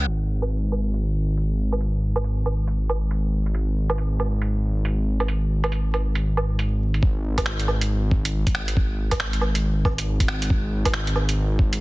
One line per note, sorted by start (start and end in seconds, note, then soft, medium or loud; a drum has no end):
0.07 7.01 G#1 medium
0.07 closed hi-hat medium
0.42 closed hi-hat soft
0.42 low woodblock medium
0.50 closed hi-hat soft
0.72 closed hi-hat soft
0.72 low woodblock soft
0.94 closed hi-hat soft
1.37 closed hi-hat medium
1.72 closed hi-hat soft
1.72 low woodblock soft
1.81 closed hi-hat medium
2.16 closed hi-hat medium
2.16 low woodblock medium
2.24 closed hi-hat medium
2.46 closed hi-hat soft
2.46 low woodblock soft
2.67 closed hi-hat medium
2.89 low woodblock soft
3.11 closed hi-hat medium
3.46 closed hi-hat soft
3.55 closed hi-hat medium
3.90 closed hi-hat medium
3.90 low woodblock medium
3.98 closed hi-hat medium
4.20 closed hi-hat soft
4.20 low woodblock soft
4.42 closed hi-hat medium
4.85 closed hi-hat soft
5.20 closed hi-hat soft
5.20 low woodblock soft
5.28 closed hi-hat soft
5.64 closed hi-hat soft
5.64 low woodblock medium
5.72 closed hi-hat soft
5.94 closed hi-hat soft
5.94 low woodblock soft
6.15 closed hi-hat soft
6.37 low woodblock soft
6.59 closed hi-hat soft
6.94 closed hi-hat soft
7.02 11.80 G#1 medium
7.02 kick loud
7.38 kick medium
7.38 closed hi-hat medium
7.38 low woodblock medium
7.46 finger snap loud
7.60 closed hi-hat soft
7.68 low woodblock soft
7.81 closed hi-hat medium
8.11 kick loud
8.25 closed hi-hat medium
8.47 kick loud
8.47 closed hi-hat soft
8.55 finger snap loud
8.68 closed hi-hat medium
8.77 kick loud
9.11 kick medium
9.11 closed hi-hat medium
9.11 low woodblock medium
9.20 finger snap loud
9.33 closed hi-hat soft
9.41 low woodblock soft
9.55 closed hi-hat medium
9.85 kick loud
9.85 low woodblock medium
9.98 closed hi-hat medium
10.20 kick medium
10.20 closed hi-hat soft
10.28 finger snap loud
10.42 closed hi-hat medium
10.50 kick loud
10.85 kick medium
10.85 closed hi-hat medium
10.85 low woodblock medium
10.94 finger snap loud
11.07 closed hi-hat soft
11.16 low woodblock soft
11.29 closed hi-hat medium
11.59 kick loud
11.73 closed hi-hat medium